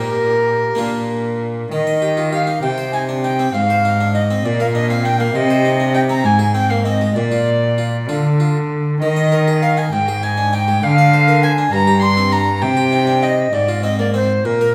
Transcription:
Already playing: harpsichord A#2 A#3 D#4 G4, cello A#2, flute G4, violin A#4
0.75 harpsichord A#3 D4 F4
0.80 harpsichord A#2, cello A#2
1.72 harpsichord D#3, cello D#3, flute D#5, violin D#5
1.87 harpsichord D#5
2.02 harpsichord G4
2.17 harpsichord F4
2.31 harpsichord G4, flute F5, violin F5
2.47 harpsichord D#4
2.62 harpsichord C3, cello C3, flute G5, violin G5
2.78 harpsichord C5
2.92 harpsichord D#4, flute G#5, violin G#5
3.09 harpsichord D4
3.23 harpsichord D#4, flute G5, violin G5
3.39 harpsichord C4
3.53 cello G#2, harpsichord G#2, flute F5, violin F5
3.70 harpsichord C5
3.85 harpsichord D#4
4.00 harpsichord D4
4.14 harpsichord D#4, flute D#5, violin D#5
4.31 harpsichord C4
4.44 cello A#2, harpsichord A#2, flute D5, violin D5
4.60 harpsichord A#4, violin F5, flute F5
4.75 harpsichord D4, flute D#5, violin D#5
4.90 harpsichord C4, flute F5, violin F5
5.04 harpsichord D4, flute G5, violin G5
5.19 harpsichord A#3, flute F5, violin F5
5.34 cello C3, harpsichord C3, flute D#5, violin D#5
5.50 harpsichord C5
5.65 harpsichord D#4
5.80 harpsichord D4
5.94 harpsichord D#4, flute G5, violin G5
6.09 harpsichord C4, flute A#5, violin A#5
6.24 harpsichord G#2, cello G#2, flute G#5, violin G#5
6.39 harpsichord G#4
6.54 harpsichord C4, flute G5, violin G5
6.70 harpsichord A#3, violin F5, flute F5
6.85 harpsichord C4, flute D#5, violin D#5
7.01 harpsichord G#3
7.15 cello A#2, harpsichord A#2, flute D5, violin D5
7.32 harpsichord F4
7.78 harpsichord F4
8.09 cello D3, harpsichord D3 F4
8.40 harpsichord F4
9.01 cello D#3, harpsichord D#3, flute D#5, violin D#5
9.17 harpsichord D#5
9.32 harpsichord A#4
9.48 harpsichord G#4
9.62 harpsichord A#4, flute F5, violin F5
9.77 harpsichord D#4, violin G#5, flute G#5
9.92 harpsichord G#2, cello G#2, flute G5, violin G5
10.08 harpsichord G#4
10.23 harpsichord D#4, flute G#5, violin G#5
10.38 harpsichord D4
10.53 harpsichord D#4, flute G5, violin G5
10.68 harpsichord G#3
10.83 harpsichord D3, cello D3, flute F5, violin F5
10.98 harpsichord D5
11.14 harpsichord C5
11.28 harpsichord A#4
11.43 harpsichord C5, flute G#5, violin G#5
11.58 harpsichord D4
11.72 cello G2, harpsichord G2, violin A#5, flute A#5
11.87 harpsichord G4
12.02 harpsichord D4, violin C6, flute C6
12.17 harpsichord C4
12.32 harpsichord D4, violin A#5, flute A#5
12.62 harpsichord C3, cello C3, violin G5, flute G5
12.77 harpsichord G4
12.92 harpsichord D#4
13.07 harpsichord D4
13.23 harpsichord D#4, flute D#5, violin D#5
13.53 harpsichord G#2, cello G#2, flute D5, violin D5
13.68 harpsichord F4
13.83 harpsichord C4, flute D#5, violin D#5
13.99 harpsichord A#3, flute D5, violin D5
14.14 harpsichord C4, flute C5, violin C5
14.45 harpsichord A#2, cello A#2, flute A#4, violin A#4
14.61 harpsichord A#4

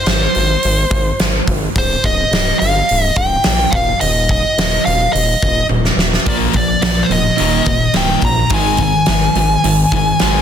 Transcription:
Already playing: lead electric guitar C5
0.06 analog synth bass G#1, snare, open hi-hat
0.35 analog synth bass G#1, open hi-hat
0.63 analog synth bass G#1, open hi-hat
0.91 analog synth bass G#1, kick, open hi-hat
1.19 analog synth bass G#1, snare, open hi-hat
1.47 analog synth bass G#1, kick, open hi-hat
1.76 analog synth bass C1, lead electric guitar C5, kick, open hi-hat
2.04 analog synth bass C1, lead electric guitar D#5, kick, open hi-hat
2.31 analog synth bass C1, snare, open hi-hat
2.59 analog synth bass G1, lead electric guitar F5, open hi-hat
2.89 analog synth bass C1, open hi-hat
3.05 lead electric guitar D#5
3.16 analog synth bass C1, lead electric guitar G5, kick, open hi-hat
3.44 analog synth bass A#1, snare, open hi-hat
3.71 analog synth bass D#1, lead electric guitar F5, kick, open hi-hat
4.01 analog synth bass D#1, lead electric guitar D#5, open hi-hat
4.29 lead electric guitar D#5, kick, open hi-hat
4.58 analog synth bass D#1, snare, open hi-hat
4.85 analog synth bass D#1, lead electric guitar F5, open hi-hat
5.13 analog synth bass D#1, lead electric guitar D#5, open hi-hat
5.42 analog synth bass D#1, kick, open hi-hat
5.69 analog synth bass D#1, high tom
5.85 snare
5.97 analog synth bass D#1, snare
6.13 snare
6.26 analog synth bass A#1, distorted electric guitar A#2 F3 A#3, lead electric guitar D5, kick, open hi-hat
6.53 analog synth bass A#1, distorted electric guitar A#2 F3, lead electric guitar D5, kick, open hi-hat
6.82 analog synth bass A#1, distorted electric guitar A#2 F3, lead electric guitar D5, snare, open hi-hat
7.03 lead electric guitar C5
7.10 analog synth bass D1, distorted electric guitar A#2 F3, lead electric guitar D#5, open hi-hat
7.38 analog synth bass D#1, distorted electric guitar D#2 A#2 D#3, open hi-hat
7.66 analog synth bass D#1, distorted electric guitar D#2 A#2, kick, open hi-hat
7.94 analog synth bass C1, distorted electric guitar D#2 A#2 D#3, lead electric guitar G5, snare, open hi-hat
8.21 analog synth bass A#1, distorted electric guitar D#2 A#2, lead electric guitar A#5, kick, open hi-hat
8.49 analog synth bass G#1, distorted electric guitar G#2 D#3 G#3, lead electric guitar G#5, kick, open hi-hat
8.77 distorted electric guitar G#2 D#3, kick, open hi-hat
8.83 lead electric guitar G#5
9.06 analog synth bass G#1, distorted electric guitar G#2 D#3, snare, open hi-hat
9.35 analog synth bass G#1, distorted electric guitar G#2 D#3, open hi-hat
9.64 analog synth bass G#1, distorted electric guitar G#2 D#3, open hi-hat
9.92 analog synth bass G#1, distorted electric guitar G#2 D#3, kick, open hi-hat
10.19 analog synth bass G#1, distorted electric guitar G#2 D#3 G#3, snare, open hi-hat

